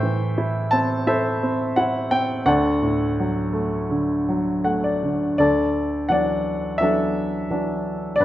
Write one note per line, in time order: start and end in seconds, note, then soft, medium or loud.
0.00 2.43 A2 medium
0.00 1.38 E3 medium
0.00 1.04 C5 medium
0.00 1.04 E5 medium
0.00 0.69 G5 medium
0.38 1.06 E4 medium
0.71 1.42 C4 medium
0.71 1.08 A5 medium
1.07 1.76 E4 medium
1.07 2.43 A4 medium
1.07 2.44 C5 medium
1.07 1.79 E5 medium
1.43 2.10 C4 medium
1.76 2.45 E4 medium
1.76 2.09 F#5 medium
2.11 2.46 C4 soft
2.11 2.48 G5 medium
2.46 5.35 D2 medium
2.46 4.62 A4 medium
2.46 4.62 D5 medium
2.46 4.61 F#5 medium
2.83 4.24 A2 medium
3.20 4.27 F#3 soft
3.53 4.63 A3 medium
3.90 5.02 D3 medium
4.29 5.36 F#3 soft
4.64 5.36 A3 soft
4.64 4.82 F#5 medium
4.84 5.35 D5 medium
5.03 5.38 D3 soft
5.38 8.15 D2 medium
5.38 6.07 A4 medium
5.38 6.10 D5 medium
6.09 6.79 E3 soft
6.09 6.79 F#3 soft
6.09 6.79 D4 soft
6.09 6.78 D5 medium
6.09 6.83 F#5 medium
6.78 7.48 E3 soft
6.78 7.49 F#3 soft
6.78 7.49 D4 soft
6.78 8.22 E5 medium
6.83 8.16 A4 medium
7.51 8.17 E3 soft
7.51 8.17 F#3 soft
7.51 8.17 D4 soft
8.16 8.25 D5 medium
8.20 8.25 G2 medium
8.20 8.25 B4 medium